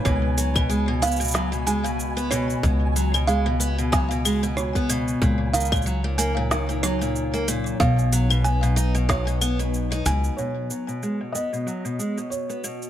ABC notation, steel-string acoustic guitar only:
X:1
M:4/4
L:1/16
Q:"Swing 16ths" 1/4=93
K:Abdor
V:1 name="Steel-string acoustic guitar" clef=bass
C,2 G, C, A, C, C C, G, C, A, C,2 C C,2 | C,2 G, C, A, C, C C, G, C, A, C,2 C C,2 | B,,2 E, B,, G, B,, B, B,, E, B,, G, B,,2 B, B,,2 | C,2 G, C, C C, E C, G, C, C C,2 E C,2 |
C,2 G, C, A, C, C C, G, C, A, C,2 C C,2 |]